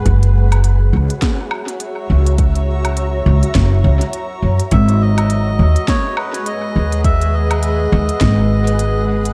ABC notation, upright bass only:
X:1
M:4/4
L:1/8
Q:"Swing 16ths" 1/4=103
K:G#m
V:1 name="Upright bass" clef=bass
F,,,3 C,, z3 C,,- | C,,3 C,, F,,, C,, z F,, | G,,,3 D,, z3 D,,- | D,,3 D,, G,,,4 |]